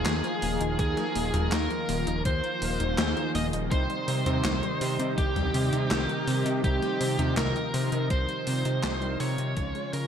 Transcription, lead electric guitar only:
Already playing: G#4
0.79 G#4
1.52 A#4
2.26 C5
3.35 D#5
3.71 C5
5.18 G4
6.64 G4
7.37 A#4
8.11 C5
9.20 C#5
9.94 A#4

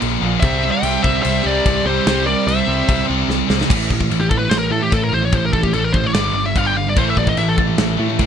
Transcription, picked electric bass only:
0.02 A#1
0.22 A#1
0.42 C2
0.83 C2
1.05 C2
1.25 C2
1.45 C2
1.66 C2
1.85 C2
2.07 C2
2.47 C2
2.68 C2
2.89 C2
3.10 C2
3.28 C2
3.50 C2
3.69 A1
3.90 A1
4.11 A1
4.51 A1
4.71 A2
4.92 A2
5.12 A1
5.33 A1
5.53 A1
5.74 A1
5.93 A1
6.14 G1
6.33 G1
6.56 G1
6.96 A1
7.17 A1
7.37 A1
7.78 A1
7.99 A2
8.19 A2

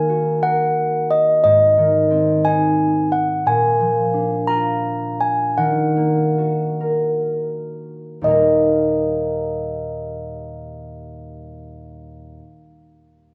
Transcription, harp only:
Already playing: D#3 A#3 D#4 D#5 F#5
0.09 F#4
0.43 A#4
1.44 G#2
1.78 D#3
2.11 C4
2.46 D#4
3.46 A#2
3.80 F3
4.13 D4
4.49 F4
5.57 D#3
5.96 A#3
6.38 F#4
6.80 A#4
8.21 D#2 A#2 G3
8.27 A#3 D#4 A#4

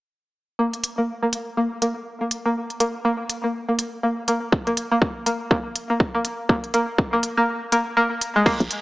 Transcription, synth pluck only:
0.59 A#3
0.98 A#3
1.23 A#3
1.57 A#3
1.82 A#3
2.21 A#3
2.46 A#3
2.80 A#3
3.05 A#3
3.44 A#3
3.69 A#3
4.03 A#3
4.28 A#3
4.67 A#3
4.92 A#3
5.26 A#3
5.51 A#3
5.90 A#3
6.15 A#3
6.49 A#3
6.74 A#3
7.13 A#3
7.37 A#3
7.72 A#3
7.97 A#3
8.36 G#3
8.46 A#3

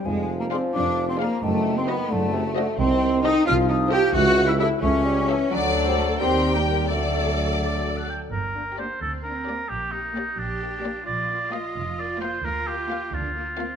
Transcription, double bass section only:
0.05 F2
0.75 F2
1.44 F#2
2.11 F#2
2.79 C2
3.47 C2
4.15 C#2
4.83 C#2
5.52 D2
6.21 D#2
6.91 D2
8.32 G1
9.01 D2
9.70 A#1
10.39 A#1
11.07 A#1
11.76 F1
12.45 D2
13.12 D2

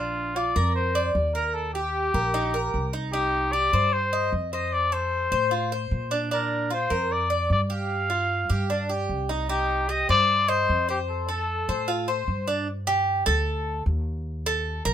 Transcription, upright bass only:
Already playing: A#1
0.56 F2
1.15 D#2
2.14 A#1
2.74 C2
3.73 G2
4.33 F2
5.32 A2
5.91 A#2
6.91 F2
7.50 G2
8.50 G2
9.09 C2
10.09 G2
10.69 F2
11.69 A2
12.28 G2
13.27 D2
13.86 D#2
14.85 A#1

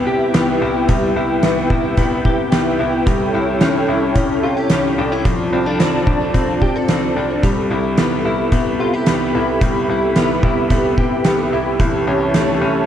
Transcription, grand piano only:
0.07 C3
0.34 C2
0.62 C2
0.89 C2
1.16 C2
1.44 C2
1.70 C2
1.98 C2
2.25 C3
2.52 C2
2.80 C2
3.07 C2
3.35 C2
3.61 C2
3.88 C2
4.16 C2
4.43 C3
4.71 C2
4.98 C2
5.25 C2
5.53 C2
5.79 C2
6.07 C2
6.34 C2
6.62 C3
6.89 C2
7.16 C2
7.43 C2
7.71 C2
7.98 C2
8.25 C2
8.52 C2
8.79 C3
9.07 C2
9.35 C2
9.61 C2
9.89 C2
10.16 C2
10.43 C2
10.71 C2
10.98 C3
11.25 C2
11.53 C2
11.80 C2
12.07 C2
12.34 C2
12.61 C2

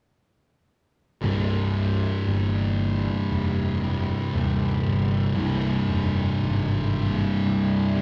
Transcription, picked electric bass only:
1.22 C1
2.27 G1
3.31 F1
4.34 D#1
4.86 G1
5.38 C1
5.89 F1
6.42 G#1
7.46 C2

